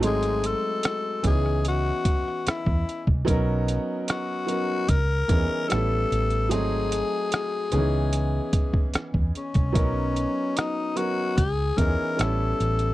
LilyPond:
<<
  \new Staff \with { instrumentName = "Tenor saxophone" } { \time 4/4 \key cis \dorian \tempo 4 = 74 gis'8 a'4 gis'8 fis'4 e'8. r16 | r4 fis'4 ais'4 a'4 | gis'2. r8 cis'8~ | cis'4 dis'8 fis'8 gis'8 ais'8 a'4 | }
  \new Staff \with { instrumentName = "Grand piano" } { \time 4/4 \key cis \dorian <fis gis a bis dis'>4. <e b cis' dis' gis'>2 r8 | <fis b cis' dis' ais'>4. <fis b cis' dis' ais'>8 r8 <e b cis' dis' gis'>8 <g b cis' e' a'>4 | <fis a bis dis' gis'>4. <dis e b cis' dis' gis'>2 r8 | <fis b cis' dis' ais'>4. <fis b cis' dis' ais'>8 r8 <e b cis' dis' gis'>8 <g b cis' e' a'>4 | }
  \new Staff \with { instrumentName = "Fingered electric bass" } { \clef bass \time 4/4 \key cis \dorian gis,,8. r8. cis,4 r8. e,16 r16 c,16 | b,,8. r4 r16 cis,8 e,16 r16 a,,8 a,,8 | gis,,8. r8. cis,4 r8. e,16 r16 c,16 | b,,8. r4 r16 cis,8 e,16 r16 a,,8 a,,8 | }
  \new DrumStaff \with { instrumentName = "Drums" } \drummode { \time 4/4 hh16 hh16 hh8 <hh ss>8 <hh bd>16 ss16 hh8 <hh bd>16 ss16 <hh ss>16 bd16 hh16 bd16 | <hh bd>8 hh8 <hh ss>8 hh8 <hh bd>8 <hh bd>8 <hh ss>8 hh16 hh16 | hh8 hh8 <hh ss>8 hh8 hh8 <hh bd>16 bd16 <hh ss>16 bd16 hh16 <hh bd>16 | <hh bd>8 hh8 <hh ss>8 hh8 <hh bd>8 <hh bd>8 <hh ss>8 hh16 hh16 | }
>>